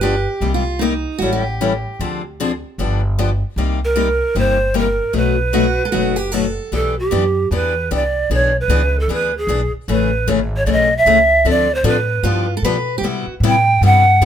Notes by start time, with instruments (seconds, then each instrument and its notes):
Already playing: upright bass G1, pan flute B4
0.01 steel-string acoustic guitar D3 F3 B3 D4 G4
0.41 upright bass C2, steel-string acoustic guitar C3 G3 A#3 D#4 G4
0.54 steel-string acoustic guitar F4
0.79 steel-string acoustic guitar C3 G3 A#3 D#4 G4
1.19 upright bass A1, steel-string acoustic guitar E3 G3 C#4 E4 F#4
1.23 steel-string acoustic guitar A4
1.33 steel-string acoustic guitar G4
1.61 steel-string acoustic guitar E3 G3 C#4 E4 A4
1.99 upright bass D2, steel-string acoustic guitar D3 F3 C4 D4 G#4
2.40 steel-string acoustic guitar D3 F3 C4 D4 G#4
2.78 upright bass G1, steel-string acoustic guitar D3 F3 B3 D4 G4
3.19 steel-string acoustic guitar D3 F3 B3 D4 G4
3.56 upright bass C2, steel-string acoustic guitar C3 G3 A#3 D#4 G4
3.85 pan flute A#4
3.96 steel-string acoustic guitar C3 G3 A#3 D#4 G4
4.35 upright bass G1, steel-string acoustic guitar C3 G3 A#3 D#4 G4, pan flute C5
4.74 steel-string acoustic guitar C3 G3 A#3 D#4 G4
4.78 pan flute A#4
5.13 upright bass B1, steel-string acoustic guitar B2 F#3 A3 D#4 F#4, pan flute B4
5.53 steel-string acoustic guitar B2 F#3 A3 D#4 F#4
5.85 steel-string acoustic guitar A4
5.92 upright bass F#1, steel-string acoustic guitar B2 F#3 A3 D#4 F#4
6.16 steel-string acoustic guitar G4
6.32 steel-string acoustic guitar B2 F#3 A3 D#4 F#4 A4
6.72 upright bass B1, steel-string acoustic guitar E3 B3 D4 G4, pan flute A4
6.99 pan flute G4
7.11 upright bass F#2, steel-string acoustic guitar E3 B3 D4 G4
7.51 upright bass E2, steel-string acoustic guitar E3 B3 D4 G4
7.55 pan flute B4
7.91 upright bass C2, steel-string acoustic guitar E3 B3 D4 G4
7.95 pan flute D5
8.30 upright bass B1, steel-string acoustic guitar E3 B3 D4 G#4
8.34 pan flute C#5
8.61 pan flute B4
8.68 upright bass C#2, steel-string acoustic guitar E3 B3 D4 G#4
9.00 pan flute A4
9.08 upright bass D2, steel-string acoustic guitar E3 B3 D4 G#4
9.14 pan flute B4
9.38 pan flute G#4
9.47 upright bass B1, steel-string acoustic guitar E3 B3 D4 G#4
9.72 muted upright bass stroke
9.88 upright bass A1, steel-string acoustic guitar C#3 E3 A3 C#4 G#4
9.92 pan flute B4
10.27 upright bass G#1, steel-string acoustic guitar C#3 E3 A3 C#4 G#4
10.57 pan flute C#5
10.66 upright bass B1, steel-string acoustic guitar C#3 E3 A3 C#4 G#4, pan flute D5
10.72 pan flute D#5
10.97 pan flute E5
11.05 upright bass C#2, steel-string acoustic guitar C#3 E3 A3 C#4 G#4
11.45 upright bass D2, steel-string acoustic guitar D3 F3 C4 D4 A4
11.50 pan flute D5
11.75 pan flute C5
11.84 upright bass A2, steel-string acoustic guitar D3 F3 C4 D4 A4, pan flute B4
12.23 upright bass G2, steel-string acoustic guitar D3 F3 B3 D4 F4 G4
12.57 steel-string acoustic guitar A4
12.62 upright bass B2, steel-string acoustic guitar D3 F3 B3 D4 G4 B4
12.98 upright bass C3, steel-string acoustic guitar G4
13.03 steel-string acoustic guitar C3 G3 B3 E4 F#4 G4
13.27 muted upright bass stroke
13.40 upright bass A2, steel-string acoustic guitar C3 G3 B3 E4 G4
13.47 pan flute G5
13.81 upright bass G2, steel-string acoustic guitar C3 G3 B3 E4 G4, pan flute F#5
14.21 upright bass F#2, steel-string acoustic guitar C3 G3